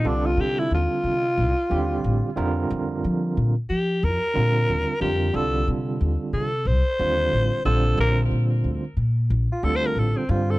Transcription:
0.04 C2 D3 G3 C4 D4 F4 A4
0.26 F4
0.37 C3 G4
0.60 E4
0.71 D#2 F4
1.04 C3
1.38 C2
1.70 D#2 D3 G3 C4 F4 G4
2.04 A1
2.36 F2 D3 G3 C4 F4 A#4
2.70 F2
3.04 F3
3.37 A#2
3.70 F3 G4
4.03 F2 A#4
4.34 A#2 D3 G3 C4 F4 A#4
4.69 D#2
5.00 F2 D3 G3 C4 F4 G4 A#4
5.33 C2 D3 G3 C4 F4 A4
5.68 C3
6.01 D#2
6.33 C3 A4
6.65 C2 C5
6.99 D#2 D3 G3 C4 F4 C5
7.32 A1
7.65 A#1 D3 G3 C4 F4 A4 C5
7.98 A#1 A#4
8.31 A#2
8.64 D2
8.97 A#2
9.30 A#1
9.52 F4
9.63 D2 D3 G3 C4 F4 A4
9.76 C5
9.86 A#4
9.95 A1 A4
10.17 C4
10.29 G2 D3 G3 C4 F4 C5
10.51 A4

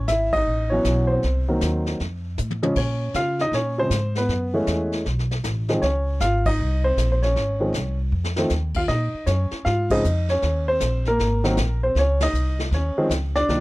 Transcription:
0.08 G#1 E4 E5, snare, hi-hat pedal
0.33 D#5, kick, ride
0.37 D#4
0.46 A1, brush sweep
0.70 E3 F#3 B3 C#4 C#5
0.84 B1, snare, hi-hat pedal
1.07 C5
1.12 C4
1.23 C2, brush sweep, snare
1.48 D#3 F#3 A#3 C4
1.61 D#2, snare, hi-hat pedal
1.86 snare
2.00 F2, brush sweep, snare
2.38 A2, hi-hat pedal, mid tom
2.51 high tom
2.62 C#3 F3 G#3 C#4, high tom
2.76 A#2 C#4 C#5, brush sweep, kick, snare, crash
3.14 C#3 F4 F5, snare, hi-hat pedal
3.39 D#4 D#5, snare
3.52 A#2 C#4 C#5, brush sweep, snare
3.78 C#3 F3 G#3 C4 C5
3.90 G#2, snare, hi-hat pedal
4.15 B3 B4, snare
4.28 F#2, brush sweep, snare
4.54 E3 G#3 A3 C#4
4.67 E2, snare, hi-hat pedal
4.92 snare
5.05 B1, brush sweep, snare
5.19 snare
5.31 snare
5.44 A1, snare, hi-hat pedal
5.68 D#3 F3 G#3 C4, snare
5.82 C#2 C#4 C#5, brush sweep, snare
6.20 G#1 F4 F5, snare, hi-hat pedal
6.46 D#4 D#5, kick, ride
6.59 C2, brush sweep
6.84 C4 C5
6.97 A#1, snare, hi-hat pedal
7.12 C5
7.22 C#4 C#5, snare
7.35 G#1, brush sweep, snare
7.60 D#3 F3 G#3 C4
7.73 C2, snare, hi-hat pedal
8.12 F2
8.24 snare
8.36 D#3 F3 A3 C4, snare
8.49 D#2, snare, hi-hat pedal
8.74 F4 F5, kick, crash
8.88 A#2 D#4 D#5, brush sweep, snare
9.14 muted upright bass stroke
9.26 F#2 C#4 C#5, snare, hi-hat pedal
9.51 muted upright bass stroke, snare
9.65 G#2 F4 F5, brush sweep, snare
9.90 C#3 F3 G#3 C4 D#4 D#5, kick, ride
10.04 F2, hi-hat pedal
10.29 C#4 C#5, snare
10.42 D#2, brush sweep, snare
10.68 C4 C5
10.80 A#1, snare, hi-hat pedal
11.05 A#4, snare
11.10 A#3
11.19 G#1, brush sweep, snare
11.44 D#3 F#3 A#3 C4, snare
11.57 A#1, snare, hi-hat pedal
11.83 C4 C5
11.95 C#2 C#5, brush sweep, snare
12.00 C#4
12.20 D#4 D#5, snare, ride
12.33 C2, hi-hat pedal
12.59 snare
12.71 D#2 C#4 C#5, brush sweep, snare
12.97 D#3 F3 G#3 C4, muted upright bass stroke
13.10 C#2, snare, hi-hat pedal
13.35 D4 D5, snare
13.49 C2 D#3 F3 A#3 D4, brush sweep, snare

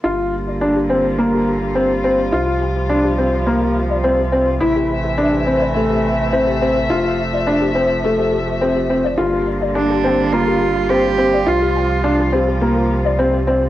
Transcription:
0.04 G1 D3 G3 A#3 F4 G4
0.19 G4
0.48 D5
0.61 D4 G4
0.76 G4
0.90 C4 G5
1.18 A#3 F4
1.33 G4
1.48 G4
1.62 G4
1.75 C4 G4
1.90 G4
2.04 C4
2.19 D5
2.32 C2 C3 F3 F4 G4
2.48 G4
2.62 G5
2.89 D4 F4
3.04 G4
3.18 C4 G4
3.33 G4
3.46 A#3 G4
3.61 G4
3.90 D5
4.04 C4 G4
4.19 G4
4.32 C4 G5
4.60 A1 E3 A3 E4 E5
4.76 G4
4.90 G4
5.04 G4
5.18 D4 G4
5.33 G4
5.46 C4
5.62 D5
5.76 A3 G4
5.90 G4
6.04 G5
6.33 C4 E4
6.47 G4
6.61 C4 G4
6.75 G4
6.90 F1 F3 F4 G4
7.04 G4
7.33 D5
7.47 D4 G4
7.61 G4
7.75 C4 G5
8.04 A3 F4
8.18 G4
8.32 G4
8.47 G4
8.61 C4 G4
8.76 G4
8.90 C4
9.04 D5
9.18 G1 D3 G3 A#3 F4 G4
9.33 G4
9.62 D5
9.75 D4 G4
9.90 G4
10.04 C4 G5
10.32 A#3 F4
10.47 G4
10.61 G4
10.75 G4
10.90 C4 G4
11.04 G4
11.18 C4
11.33 D5
11.46 C2 C3 F3 F4 G4
11.62 G4
11.76 G5
12.04 D4 F4
12.19 G4
12.32 C4 G4
12.48 G4
12.61 A#3 G4
12.76 G4
13.05 D5
13.19 C4 G4
13.33 G4
13.47 C4 G5

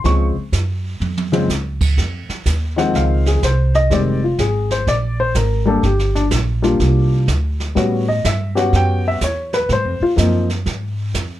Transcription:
0.04 C#2 C#3 F3 G#3 C4 C#6, brush sweep, kick, snare
0.37 muted upright bass stroke
0.52 F#2, kick, snare, hi-hat pedal
1.00 F2, mid tom
1.17 mid tom
1.32 C#3 F3 G#3 C4, mid tom
1.48 C#2, snare, hi-hat pedal
1.81 kick, crash
1.97 F2, brush sweep, kick, snare
2.29 muted upright bass stroke, snare
2.46 D#2, kick, snare, hi-hat pedal
2.76 D#3 F3 G#3 C4 F#5, snare
2.94 C#2 F5, brush sweep, kick, snare
3.26 G#4, snare
3.42 C2 C5, kick, snare, hi-hat pedal
3.74 D#5, snare
3.90 F1 D#3 G3 G#3 C4 D5, brush sweep, kick, snare
4.24 F4
4.39 G#1 G#4, kick, snare, hi-hat pedal
4.70 C5, snare
4.87 A#1 D5, brush sweep, kick, snare
5.20 C5
5.35 G#1 A#4, kick, snare, hi-hat pedal
5.65 G3 A#3 D4 G4 A4
5.83 G1 G4, brush sweep, kick, snare
5.99 snare
6.15 D4, snare
6.31 A#1, kick, snare, hi-hat pedal
6.62 G3 A#3 D4 F4, snare
6.80 C2, brush sweep, kick, snare
7.28 D2, kick, snare, hi-hat pedal
7.60 snare
7.75 A2 G3 B3 C#4 F#4, brush sweep, kick, snare
8.08 D#5
8.25 G2 E5, kick, snare, hi-hat pedal
8.55 B3 C#4 F#4 G4 F#5, snare
8.73 F#2 G5, brush sweep, kick, snare
9.08 E5
9.21 E2 C#5, kick, snare, hi-hat pedal
9.53 B4, snare
9.69 G#2 C5, brush sweep, kick, snare
9.85 F2
10.00 D#2 F4
10.16 F#2 F3 A#3 C4 D#4, kick, snare, hi-hat pedal
10.49 snare
10.66 G#2, brush sweep, kick, snare
11.14 F2, kick, snare, hi-hat pedal

